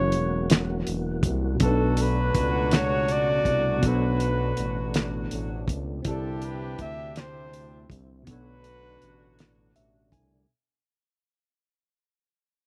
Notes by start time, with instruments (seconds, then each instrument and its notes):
Already playing: analog synth bass F#1, tonewheel organ E3 A#3 F#4, tine electric piano F#3 C#4 E4 G#4 A#4, flugelhorn C#5
0.12 analog synth bass E1, closed hi-hat
0.50 snare, closed hi-hat
0.87 analog synth bass E1, closed hi-hat
1.23 analog synth bass C2, kick, closed hi-hat
1.55 tine electric piano B2 B3
1.60 analog synth bass B1, tonewheel organ B2 A3 D4, horn section F#3 D4 F#4, tine electric piano C#4 A4, flugelhorn A4, kick, closed hi-hat
1.65 tine electric piano D4 B4
1.97 closed hi-hat
2.02 flugelhorn B4
2.35 analog synth bass C#2, kick, closed hi-hat
2.71 snare, closed hi-hat
2.76 flugelhorn C#5
3.08 flugelhorn D5, closed hi-hat
3.45 analog synth bass C2, kick, closed hi-hat
3.78 tine electric piano B2 B3
3.83 analog synth bass B1, tine electric piano D4 A4, kick, closed hi-hat
3.88 flugelhorn B4, tine electric piano C5
3.95 tine electric piano C#5
4.20 closed hi-hat
4.57 analog synth bass A1, closed hi-hat
4.94 snare, closed hi-hat
5.31 analog synth bass A1, closed hi-hat
5.68 analog synth bass C#2, kick, closed hi-hat
6.00 tine electric piano C3 C4
6.04 analog synth bass C2, tonewheel organ D3 C4 E4, horn section D4 E4 G4, tine electric piano E4, flugelhorn A4, kick, closed hi-hat
6.08 tine electric piano G4 D5
6.42 flugelhorn B4, closed hi-hat
6.79 analog synth bass D2, flugelhorn E5, kick, closed hi-hat
7.16 flugelhorn C5, snare, closed hi-hat
7.53 closed hi-hat
7.90 analog synth bass C2, kick, closed hi-hat
8.22 tine electric piano B2 B3, tonewheel organ D3 A3 D4
8.27 analog synth bass B1, horn section F#3 D4 F#4, tine electric piano D4 A4, flugelhorn B4, kick, closed hi-hat
8.33 tine electric piano C#5
8.64 closed hi-hat
9.02 analog synth bass A1, closed hi-hat
9.39 snare, closed hi-hat
9.76 analog synth bass A1, tine electric piano E5, closed hi-hat
10.12 analog synth bass C2, tine electric piano G#5, kick, closed hi-hat